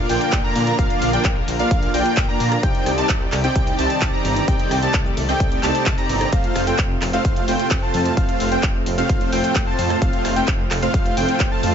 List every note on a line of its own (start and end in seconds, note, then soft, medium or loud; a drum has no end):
0.00 2.60 D3 medium
0.00 2.60 F3 medium
0.00 2.60 A#3 medium
0.00 2.60 F4 medium
0.00 2.60 A#4 loud
0.09 0.17 A#1 loud
0.09 0.41 A#3 medium
0.09 0.41 D4 medium
0.09 0.41 F4 medium
0.09 0.41 D5 medium
0.09 0.41 G5 loud
0.09 open hi-hat loud
0.09 cabasa medium
0.21 closed hi-hat soft
0.21 cabasa soft
0.32 0.40 A#1 medium
0.32 kick loud
0.32 clap loud
0.32 closed hi-hat medium
0.32 cabasa soft
0.44 0.76 A#3 medium
0.44 0.76 D4 medium
0.44 0.76 F4 medium
0.44 0.76 D5 medium
0.44 0.76 A#5 medium
0.44 0.76 A#5 loud
0.56 0.72 A#2 medium
0.56 open hi-hat loud
0.56 cabasa medium
0.67 closed hi-hat medium
0.67 cabasa soft
0.79 0.87 A#1 loud
0.79 1.10 A#3 medium
0.79 1.10 D4 medium
0.79 1.10 F4 medium
0.79 1.10 D5 medium
0.79 1.10 F5 medium
0.79 1.11 F5 medium
0.79 kick loud
0.79 closed hi-hat medium
0.79 cabasa soft
0.90 closed hi-hat soft
1.02 1.18 A#1 medium
1.02 open hi-hat loud
1.02 cabasa medium
1.13 1.27 A#3 loud
1.13 1.27 D4 medium
1.13 1.27 F4 medium
1.13 1.27 D5 medium
1.13 1.27 G5 loud
1.13 closed hi-hat medium
1.13 cabasa soft
1.25 1.41 A#1 loud
1.25 kick loud
1.25 clap loud
1.25 closed hi-hat medium
1.25 cabasa soft
1.48 1.64 A#1 medium
1.48 open hi-hat loud
1.48 cabasa medium
1.59 1.91 A#3 medium
1.59 1.91 D4 medium
1.59 1.91 F4 medium
1.59 1.91 D5 medium
1.59 1.91 F5 loud
1.59 closed hi-hat soft
1.59 cabasa soft
1.71 1.87 A#1 medium
1.71 kick loud
1.71 closed hi-hat medium
1.71 cabasa soft
1.83 closed hi-hat soft
1.94 2.02 A#1 loud
1.94 2.26 A#3 loud
1.94 2.26 D4 medium
1.94 2.26 F4 medium
1.94 2.26 D5 medium
1.94 2.26 G5 loud
1.94 open hi-hat loud
1.94 cabasa medium
2.06 closed hi-hat medium
2.06 cabasa soft
2.17 2.25 A#1 medium
2.17 kick loud
2.17 clap loud
2.17 closed hi-hat medium
2.17 cabasa soft
2.29 2.60 A#3 medium
2.29 2.60 D4 medium
2.29 2.60 F4 medium
2.29 2.60 D5 medium
2.29 2.60 A#5 loud
2.29 2.60 A#5 medium
2.40 2.56 A#2 medium
2.40 open hi-hat loud
2.40 cabasa medium
2.52 cross-stick medium
2.52 closed hi-hat medium
2.52 cabasa soft
2.63 2.71 C2 loud
2.63 11.75 C3 medium
2.63 6.29 D#3 medium
2.63 6.29 G3 medium
2.63 2.95 C4 medium
2.63 2.95 D#4 medium
2.63 2.95 G4 medium
2.63 4.46 G4 medium
2.63 6.29 D5 medium
2.63 2.95 D5 medium
2.63 2.95 G5 medium
2.63 kick loud
2.63 closed hi-hat medium
2.63 cabasa soft
2.75 closed hi-hat soft
2.86 3.02 C2 medium
2.86 cross-stick medium
2.86 open hi-hat loud
2.86 cabasa medium
2.98 3.12 C4 medium
2.98 3.12 D#4 medium
2.98 3.12 G4 medium
2.98 3.12 D5 medium
2.98 3.12 A5 loud
2.98 closed hi-hat medium
2.98 cabasa soft
3.09 3.25 C2 loud
3.09 kick loud
3.09 clap loud
3.09 closed hi-hat medium
3.09 cabasa soft
3.32 3.48 C2 medium
3.32 cross-stick medium
3.32 clap medium
3.32 open hi-hat loud
3.32 cabasa medium
3.44 3.76 C4 medium
3.44 3.76 D#4 medium
3.44 3.76 G4 medium
3.44 3.76 D5 medium
3.44 3.76 G5 medium
3.44 3.76 G5 loud
3.44 closed hi-hat medium
3.44 cabasa soft
3.56 3.72 C2 loud
3.56 kick loud
3.56 closed hi-hat medium
3.56 cabasa soft
3.67 closed hi-hat soft
3.79 3.87 C2 loud
3.79 4.10 C4 loud
3.79 4.10 D#4 medium
3.79 4.10 G4 medium
3.79 4.10 D5 medium
3.79 4.10 A5 loud
3.79 open hi-hat loud
3.79 cabasa medium
3.90 closed hi-hat medium
3.90 cabasa soft
4.02 4.10 C2 medium
4.02 kick loud
4.02 clap loud
4.02 closed hi-hat medium
4.02 cabasa soft
4.13 4.45 C4 medium
4.13 4.45 D#4 medium
4.13 4.45 G4 medium
4.13 4.45 D5 medium
4.13 4.45 A#5 medium
4.13 4.45 A#5 loud
4.25 4.41 G1 medium
4.25 open hi-hat loud
4.25 cabasa medium
4.36 closed hi-hat medium
4.36 cabasa soft
4.48 4.56 C2 loud
4.48 6.31 A3 medium
4.48 4.80 C4 medium
4.48 4.80 D#4 medium
4.48 4.80 G4 medium
4.48 4.80 D5 medium
4.48 4.80 G5 medium
4.48 kick loud
4.48 closed hi-hat medium
4.48 cabasa soft
4.60 closed hi-hat soft
4.71 4.87 C2 medium
4.71 cross-stick medium
4.71 open hi-hat loud
4.71 cabasa medium
4.82 4.97 C4 medium
4.82 4.97 D#4 medium
4.82 4.97 G4 medium
4.82 4.97 D5 medium
4.82 4.97 A5 loud
4.82 closed hi-hat medium
4.82 cabasa soft
4.94 5.10 C2 loud
4.94 kick loud
4.94 clap loud
4.94 closed hi-hat medium
4.94 cabasa soft
5.06 cabasa soft
5.17 5.33 C2 medium
5.17 open hi-hat loud
5.17 cabasa medium
5.29 5.60 C4 medium
5.29 5.60 D#4 medium
5.29 5.60 G4 medium
5.29 5.60 D5 medium
5.29 5.60 G5 loud
5.29 5.61 G5 loud
5.29 open hi-hat medium
5.29 cabasa soft
5.40 5.56 C2 loud
5.40 kick loud
5.40 closed hi-hat medium
5.40 cabasa soft
5.52 closed hi-hat soft
5.52 cabasa soft
5.63 5.71 C2 loud
5.63 5.95 C4 loud
5.63 5.95 D#4 medium
5.63 5.95 G4 medium
5.63 5.95 D5 medium
5.63 5.95 A5 loud
5.63 clap medium
5.63 open hi-hat loud
5.63 cabasa medium
5.75 closed hi-hat medium
5.75 cabasa soft
5.86 5.94 C2 medium
5.86 kick loud
5.86 clap loud
5.86 closed hi-hat medium
5.86 cabasa soft
5.98 6.30 C4 medium
5.98 6.30 D#4 medium
5.98 6.30 G4 medium
5.98 6.30 D5 medium
5.98 6.30 A#5 loud
5.98 6.30 A#5 medium
5.98 closed hi-hat soft
5.98 cabasa soft
6.09 6.25 G1 medium
6.09 open hi-hat loud
6.09 cabasa medium
6.21 cross-stick medium
6.21 closed hi-hat medium
6.21 cabasa soft
6.32 6.40 F1 loud
6.32 11.75 A2 medium
6.32 11.75 F3 medium
6.32 6.64 A3 medium
6.32 6.64 C4 medium
6.32 11.75 C4 medium
6.32 6.64 F4 medium
6.32 11.75 F4 medium
6.32 6.64 C5 medium
6.32 6.64 F5 medium
6.32 kick loud
6.32 closed hi-hat medium
6.32 cabasa soft
6.44 closed hi-hat soft
6.56 6.72 F1 medium
6.56 cross-stick medium
6.56 open hi-hat loud
6.56 cabasa medium
6.67 6.81 A3 medium
6.67 6.81 C4 medium
6.67 6.81 F4 medium
6.67 6.81 C5 medium
6.67 6.81 G5 loud
6.67 closed hi-hat medium
6.67 cabasa soft
6.79 6.95 F1 loud
6.79 kick loud
6.79 clap loud
6.79 closed hi-hat medium
6.79 cabasa soft
7.02 7.18 F1 medium
7.02 cross-stick medium
7.02 clap medium
7.02 open hi-hat loud
7.02 cabasa medium
7.13 7.45 A3 medium
7.13 7.45 C4 medium
7.13 7.45 F4 medium
7.13 7.45 C5 medium
7.13 7.45 F5 loud
7.13 closed hi-hat medium
7.13 cabasa soft
7.25 7.41 F1 loud
7.25 kick loud
7.25 closed hi-hat medium
7.25 cabasa soft
7.36 closed hi-hat soft
7.48 7.56 F1 loud
7.48 7.80 A3 medium
7.48 7.80 C4 medium
7.48 7.80 F4 medium
7.48 7.80 C5 medium
7.48 7.80 G5 loud
7.48 open hi-hat loud
7.48 cabasa medium
7.59 closed hi-hat medium
7.59 cabasa soft
7.71 7.79 F1 medium
7.71 kick loud
7.71 clap loud
7.71 closed hi-hat medium
7.71 cabasa soft
7.82 8.14 A3 medium
7.82 8.14 C4 medium
7.82 8.14 F4 medium
7.82 8.14 C5 medium
7.82 8.14 A5 loud
7.82 8.14 A5 medium
7.94 8.10 F2 medium
7.94 open hi-hat loud
7.94 cabasa medium
8.06 closed hi-hat medium
8.06 cabasa soft
8.17 8.25 F1 loud
8.17 8.49 A3 medium
8.17 8.49 C4 medium
8.17 8.49 F4 medium
8.17 8.49 C5 medium
8.17 8.49 F5 loud
8.17 8.49 F5 medium
8.17 kick loud
8.17 closed hi-hat medium
8.17 cabasa soft
8.29 closed hi-hat soft
8.40 8.56 F1 medium
8.40 open hi-hat loud
8.40 cabasa medium
8.52 8.66 A3 medium
8.52 8.66 C4 medium
8.52 8.66 F4 medium
8.52 8.66 C5 medium
8.52 8.66 G5 loud
8.52 closed hi-hat medium
8.52 cabasa soft
8.63 8.79 F1 loud
8.63 kick loud
8.63 clap loud
8.63 closed hi-hat medium
8.63 cabasa soft
8.86 9.02 F1 medium
8.86 open hi-hat loud
8.86 cabasa medium
8.98 9.30 A3 medium
8.98 9.30 C4 medium
8.98 9.30 F4 medium
8.98 9.30 C5 medium
8.98 9.30 F5 loud
8.98 closed hi-hat medium
8.98 cabasa soft
9.09 9.25 F1 loud
9.09 kick loud
9.09 closed hi-hat medium
9.09 cabasa soft
9.21 closed hi-hat soft
9.32 9.40 F1 loud
9.32 9.64 A3 medium
9.32 9.64 C4 medium
9.32 9.64 F4 medium
9.32 9.64 C5 medium
9.32 9.64 G5 loud
9.32 open hi-hat loud
9.32 cabasa medium
9.44 closed hi-hat medium
9.44 cabasa soft
9.56 9.64 F1 medium
9.56 kick loud
9.56 clap loud
9.56 closed hi-hat medium
9.56 cabasa soft
9.67 9.99 A3 medium
9.67 9.99 C4 medium
9.67 9.99 F4 medium
9.67 9.99 C5 medium
9.67 9.99 A5 medium
9.79 9.95 F2 medium
9.79 open hi-hat loud
9.79 cabasa medium
9.90 cross-stick medium
9.90 closed hi-hat medium
9.90 cabasa soft
10.02 10.10 F1 loud
10.02 10.34 A3 medium
10.02 10.34 C4 medium
10.02 10.34 F4 medium
10.02 10.34 C5 medium
10.02 10.34 F5 medium
10.02 kick loud
10.02 closed hi-hat medium
10.02 cabasa soft
10.13 closed hi-hat soft
10.25 10.41 F1 medium
10.25 cross-stick medium
10.25 open hi-hat loud
10.25 cabasa medium
10.36 10.51 A3 medium
10.36 10.51 C4 medium
10.36 10.51 F4 medium
10.36 10.51 C5 medium
10.36 10.51 G5 loud
10.36 closed hi-hat medium
10.36 cabasa soft
10.48 10.64 F1 loud
10.48 kick loud
10.48 clap loud
10.48 closed hi-hat medium
10.48 cabasa soft
10.71 10.87 F1 medium
10.71 cross-stick medium
10.71 clap medium
10.71 open hi-hat loud
10.71 cabasa medium
10.82 11.14 A3 medium
10.82 11.14 C4 medium
10.82 11.14 F4 medium
10.82 11.14 C5 medium
10.82 11.14 F5 loud
10.82 closed hi-hat soft
10.82 cabasa soft
10.94 11.10 F1 loud
10.94 kick loud
10.94 closed hi-hat medium
10.94 cabasa soft
11.06 closed hi-hat soft
11.17 11.25 F1 loud
11.17 11.49 A3 loud
11.17 11.49 C4 medium
11.17 11.49 F4 medium
11.17 11.49 C5 medium
11.17 11.49 G5 loud
11.17 open hi-hat loud
11.17 cabasa medium
11.29 closed hi-hat medium
11.29 cabasa soft
11.40 11.48 F1 medium
11.40 kick loud
11.40 clap loud
11.40 closed hi-hat medium
11.40 cabasa soft
11.52 11.75 A3 medium
11.52 11.75 C4 medium
11.52 11.75 F4 medium
11.52 11.75 C5 medium
11.52 11.75 A5 loud
11.52 11.75 A5 medium
11.63 11.75 F2 medium
11.63 open hi-hat loud
11.63 cabasa medium